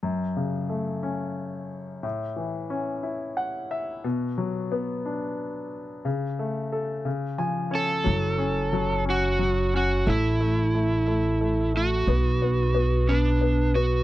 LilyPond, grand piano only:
<<
  \new Staff \with { instrumentName = "Grand piano" } { \time 6/8 \key fis \minor \tempo 4. = 60 r2. | r2 fis''8 e''8 | r2. | r2 gis''8 cis''8 |
r2. | r2. | r2. | }
  \new Staff \with { instrumentName = "Grand piano" } { \time 6/8 \key fis \minor fis,8 cis8 a8 cis'4. | a,8 e8 cis'8 e'4. | b,8 fis8 b8 d'4. | cis8 a8 a'8 cis8 eis8 cis'8 |
fis8 cis'8 fis8 cis'8 fis8 cis'8 | a8 a8 a8 a8 a8 a8 | b8 b8 b8 b8 b8 b8 | }
>>